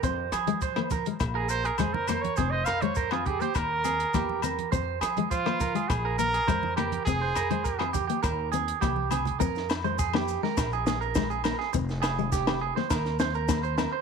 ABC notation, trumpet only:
X:1
M:4/4
L:1/16
Q:1/4=102
K:Fm
V:1 name="Trumpet"
z8 z A c B A B c d | c e f d c F A c B6 z2 | z4 F4 A2 B4 G2 | A6 z8 z2 |
z16 | z16 |]